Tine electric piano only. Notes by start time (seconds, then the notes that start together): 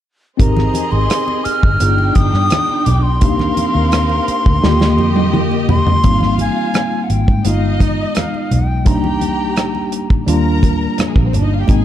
0.37 C4 D#4 G4 A#4
1.80 B3 D#4 F4 G#4
3.21 A#3 D4 D#4 G4
4.63 D3 A#3 F4 G4
6.04 G3 A#3 C4 D#4
7.45 G#3 A#3 D#4 F4
7.52 B3
8.85 G3 A#3 D4 D#4
10.26 G3 A#3 D4 F4
11.67 G#3 A#3 C4 D#4